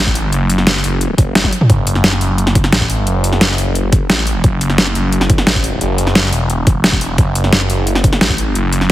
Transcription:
0.00 A1
0.07 kick
0.15 open hi-hat
0.33 F#1, closed hi-hat
0.50 closed hi-hat
0.58 snare
0.67 snare, closed hi-hat
0.84 F#1, open hi-hat
1.01 closed hi-hat
1.18 F#1, kick, closed hi-hat
1.35 snare, closed hi-hat, high tom
1.44 kick, high tom
1.53 open hi-hat
1.61 mid tom
1.70 F#1, kick, closed hi-hat
1.87 closed hi-hat
1.95 snare
2.04 snare, closed hi-hat
2.13 snare
2.21 F#1, open hi-hat
2.38 closed hi-hat
2.47 snare
2.55 kick, closed hi-hat
2.64 snare
2.73 A1, snare, closed hi-hat
2.81 kick
2.90 open hi-hat
3.07 F#1, closed hi-hat
3.24 closed hi-hat
3.33 snare
3.41 snare, closed hi-hat
3.58 F#1, open hi-hat
3.75 closed hi-hat
3.92 kick, closed hi-hat
4.10 A1, snare, closed hi-hat
4.27 open hi-hat
4.44 F#1, kick, closed hi-hat
4.61 closed hi-hat
4.70 snare
4.78 snare, closed hi-hat
4.87 snare
4.95 F#1, open hi-hat
5.12 closed hi-hat
5.21 snare
5.30 kick, closed hi-hat
5.38 snare
5.47 A1, snare, closed hi-hat
5.55 kick
5.64 open hi-hat
5.81 F#1, closed hi-hat
5.98 closed hi-hat
6.07 snare
6.15 snare, closed hi-hat
6.33 E1, open hi-hat
6.50 closed hi-hat
6.67 kick, closed hi-hat
6.84 snare, closed hi-hat
6.93 kick
7.01 open hi-hat
7.18 F#1, kick, closed hi-hat
7.35 closed hi-hat
7.44 snare
7.53 snare, closed hi-hat
7.61 snare
7.70 F#1, open hi-hat
7.87 closed hi-hat
7.95 snare
8.04 kick, closed hi-hat
8.13 snare
8.21 A1, snare, closed hi-hat
8.30 kick
8.38 open hi-hat
8.55 F#1, closed hi-hat
8.73 closed hi-hat
8.81 snare

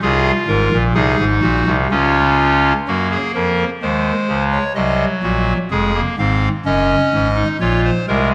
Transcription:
0.02 C2 C3 F4 G#4
0.48 G#1 G#2 A#4
0.72 A#1 A#2
0.95 C2 C3 D#4 G#4
1.19 G#1 G#2
1.41 A#1 A#2 F#4
1.67 C2 C3
1.91 C#2 C#3 C#4 F4
2.88 F#2 F#3 A#3 F#4
3.11 G#4
3.35 F2 F3 A#4
3.82 D#2 D#3 G#3 C5
4.28 C#2 C#3
4.52 C#5
4.75 C2 C3 F#3 D#5
5.23 A#1 A#2 F#4
5.71 F1 F2 G#3 G#4
5.94 A#3
6.18 G#1 G#2 C4 F5
6.65 F#1 F#2 C#4 D#5
7.13 G#1 G#2
7.36 D#4
7.60 A#1 A#2 F4 C#5
7.85 C5
8.08 C2 C3 G#3 A#4

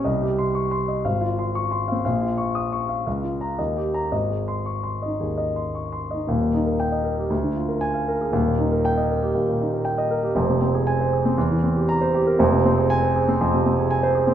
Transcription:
0.04 C2 D#5
0.22 G4
0.38 C6
0.55 C#6
0.71 C6
0.88 D#5
1.05 G#1 F5
1.21 F4
1.39 C6
1.55 C#6
1.71 C6
1.88 C4 F5
2.05 A#1 F5
2.22 F4
2.38 C#6
2.55 D#6
2.72 C#6
2.89 F5
3.07 C#2 F5
3.24 F4
3.41 A#5
3.58 D#2 D#5
3.76 G4
3.94 A#5
4.12 G#1 D#5
4.29 G#4
4.48 C6
4.66 C#6
4.84 C6
5.02 D#4 D#5
5.20 D#2 G#4
5.38 D#5
5.56 C6
5.75 C#6
5.92 C6
6.11 D#4 D#5
6.27 D#1 D#2
6.41 A#2
6.54 D#4
6.66 A#4
6.80 G5
6.92 D#5
7.04 A#4
7.18 G4
7.30 D2
7.43 D3
7.56 F4
7.68 A#4
7.81 G#5
7.94 F5
8.08 A#4
8.21 G#4
8.32 D#1 D#2
8.47 A#2
8.59 D#4
8.72 A#4
8.85 G5
8.97 D#5
9.11 A#4
9.22 G4
9.35 D#2
9.48 A#2
9.61 D#4
9.73 A#4
9.85 G5
9.98 D#5
10.11 A#4
10.23 G4
10.35 F1 F2
10.49 C3
10.61 C4
10.75 G#4
10.87 G#5
11.00 C5
11.13 G#4
11.25 C4
11.38 E2
11.51 E3
11.63 C4
11.76 G4
11.89 A#5
12.01 C5
12.14 G4
12.27 A#4
12.39 F1 F2
12.52 C3
12.65 C4
12.78 G#4
12.90 G#5
13.03 C5
13.15 G#4
13.28 C4
13.41 F2
13.54 C3
13.66 C4
13.79 G#4
13.91 G#5
14.03 C5
14.15 G#4
14.27 C4

